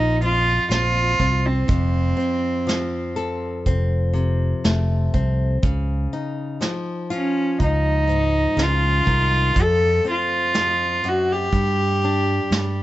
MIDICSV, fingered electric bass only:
0, 0, Header, 1, 2, 480
1, 0, Start_track
1, 0, Tempo, 983607
1, 825, Time_signature, 4, 2, 24, 8
1, 6261, End_track
2, 0, Start_track
2, 0, Title_t, "Fingered electric bass"
2, 0, Program_c, 0, 33
2, 0, Note_on_c, 0, 34, 77
2, 281, Note_off_c, 0, 34, 0
2, 341, Note_on_c, 0, 34, 76
2, 553, Note_off_c, 0, 34, 0
2, 585, Note_on_c, 0, 36, 78
2, 795, Note_off_c, 0, 36, 0
2, 826, Note_on_c, 0, 29, 83
2, 1035, Note_off_c, 0, 29, 0
2, 1788, Note_on_c, 0, 29, 74
2, 2207, Note_off_c, 0, 29, 0
2, 2270, Note_on_c, 0, 29, 80
2, 2478, Note_off_c, 0, 29, 0
2, 2511, Note_on_c, 0, 36, 81
2, 2719, Note_off_c, 0, 36, 0
2, 2749, Note_on_c, 0, 37, 88
2, 2957, Note_off_c, 0, 37, 0
2, 3710, Note_on_c, 0, 37, 84
2, 4126, Note_off_c, 0, 37, 0
2, 4181, Note_on_c, 0, 37, 80
2, 4392, Note_off_c, 0, 37, 0
2, 4427, Note_on_c, 0, 36, 82
2, 4635, Note_off_c, 0, 36, 0
2, 4664, Note_on_c, 0, 41, 85
2, 4874, Note_off_c, 0, 41, 0
2, 5626, Note_on_c, 0, 43, 82
2, 6044, Note_off_c, 0, 43, 0
2, 6105, Note_on_c, 0, 43, 72
2, 6261, Note_off_c, 0, 43, 0
2, 6261, End_track
0, 0, End_of_file